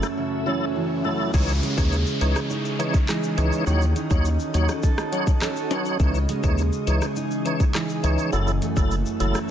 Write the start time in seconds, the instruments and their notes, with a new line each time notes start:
Already playing: steel-string acoustic guitar F#2 E3 A3 C#4, ambient pad C#4 F#4 A4 E5, riser
0.03 cross-stick, shaker
0.17 steel-string acoustic guitar C#3
0.46 steel-string acoustic guitar E3 A3 C#4, tonewheel organ F#3 E4 A4
0.76 steel-string acoustic guitar E3
1.04 tonewheel organ F#3 E4 A4, steel-string acoustic guitar A3
1.34 sub bass C#2, steel-string acoustic guitar C#3, tonewheel organ E3 D#4 C#5, ambient pad E3 C#4 G#4 D#5, kick, crash, downlifter, shaker
1.48 shaker
1.63 steel-string acoustic guitar G#3, closed hi-hat, shaker
1.77 sub bass D#2, tonewheel organ E3 D#4 C#5, kick, shaker
1.92 shaker
2.07 shaker
2.21 sub bass C#2, tonewheel organ E3 D#4 C#5, closed hi-hat, shaker
2.36 cross-stick, shaker
2.50 steel-string acoustic guitar D#4, shaker
2.65 shaker
2.79 tonewheel organ E3 D#4 C#5, closed hi-hat, shaker
2.94 kick, shaker
3.09 steel-string acoustic guitar E3 G#3 D#4, cross-stick, clap, shaker
3.23 shaker
3.37 sub bass C#2, tonewheel organ E3 D#4 C#5, closed hi-hat, shaker
3.52 shaker
3.66 sub bass D#2, steel-string acoustic guitar D#3, tonewheel organ F#3 D#4 C#5, ambient pad F#4 A4, shaker
3.81 shaker
3.96 steel-string acoustic guitar D#4, closed hi-hat, shaker
4.10 sub bass D#2, tonewheel organ F#3 D#4 C#5, kick, shaker
4.25 shaker
4.40 shaker
4.54 sub bass D#2, tonewheel organ F#3 D#4 C#5, closed hi-hat, shaker
4.68 cross-stick, shaker
4.83 steel-string acoustic guitar A4, kick, shaker
4.98 cross-stick, shaker
5.12 tonewheel organ F#3 D#4 C#5, closed hi-hat, shaker
5.27 kick, shaker
5.42 steel-string acoustic guitar C#4 D#4 A4, cross-stick, clap, shaker
5.56 shaker
5.70 tonewheel organ F#3 D#4 C#5, closed hi-hat, high timbale, shaker
5.85 shaker
6.00 sub bass C#2, steel-string acoustic guitar C#3, tonewheel organ E3 D#4 C#5, ambient pad E3 G#4, kick, shaker
6.14 shaker
6.29 steel-string acoustic guitar G#3, closed hi-hat, shaker
6.43 sub bass D#2, tonewheel organ E3 D#4 C#5, kick, shaker
6.58 shaker
6.72 shaker
6.87 sub bass C#2, tonewheel organ E3 D#4 C#5, closed hi-hat, shaker
7.01 cross-stick, shaker
7.16 steel-string acoustic guitar D#4, shaker
7.31 shaker
7.45 tonewheel organ E3 D#4 C#5, closed hi-hat, shaker
7.60 kick, shaker
7.75 steel-string acoustic guitar E3 G#3 D#4, cross-stick, clap, shaker
7.89 shaker
8.03 sub bass C#2, tonewheel organ E3 D#4 C#5, closed hi-hat, shaker
8.18 shaker
8.32 sub bass F#1, steel-string acoustic guitar F#2, tonewheel organ F#3 E4 A4, ambient pad C#4 F#4 A4 E5, shaker
8.47 shaker
8.62 steel-string acoustic guitar A3, closed hi-hat, shaker
8.76 sub bass F#1, tonewheel organ F#3 E4 A4, kick, shaker
8.91 shaker
9.06 shaker
9.20 sub bass F#1, tonewheel organ F#3 E4 A4, closed hi-hat, shaker
9.35 cross-stick, shaker